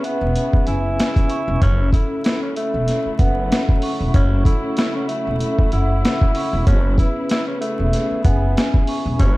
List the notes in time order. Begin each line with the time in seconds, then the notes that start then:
Already playing: C#3 B3 C#4 E4 G#4 B4 G#5 C#6
0.03 B3 E5, closed hi-hat
0.21 E1
0.35 C#4, closed hi-hat
0.53 muted upright bass stroke, kick
0.66 F#1 E4 G#5, closed hi-hat
0.98 C#4, snare, closed hi-hat
1.16 kick, closed hi-hat
1.30 C#6, closed hi-hat
1.48 E1
1.61 F#1 C#3 F#3 A3 C#4 E4, kick, closed hi-hat
1.93 E4 A4, kick, closed hi-hat
2.24 E4, snare, closed hi-hat
2.42 C#4
2.56 A3 E5, closed hi-hat
2.74 E1
2.87 C#4, snare, closed hi-hat
3.06 muted upright bass stroke
3.19 F#1 B3 F#5, kick, closed hi-hat
3.50 C#4, snare, closed hi-hat
3.69 kick
3.82 C#6, open hi-hat
4.01 E1
4.14 F#1 C#4, kick, closed hi-hat
4.45 E4 A4, kick, closed hi-hat
4.77 E4, snare, closed hi-hat
4.95 C#4
5.08 A3 E5, closed hi-hat
5.27 E1
5.40 C#4, closed hi-hat
5.59 muted upright bass stroke, kick
5.72 F#1 E4 F#5, closed hi-hat
6.04 C#4, snare, closed hi-hat
6.21 kick
6.35 C#6, open hi-hat
6.53 E1
6.66 F#1 B3 C#4 G#4, kick, closed hi-hat
6.98 E4 B4, kick, closed hi-hat
7.29 E4, snare, closed hi-hat
7.47 C#4
7.61 A3 E5, closed hi-hat
7.79 E1
7.93 C#4, snare, closed hi-hat
8.11 muted upright bass stroke
8.24 F#1 B3 G#5, kick, closed hi-hat
8.57 C#4, snare, closed hi-hat
8.74 kick
8.87 C#6, open hi-hat
9.06 E1
9.19 F#1 C#4, kick, closed hi-hat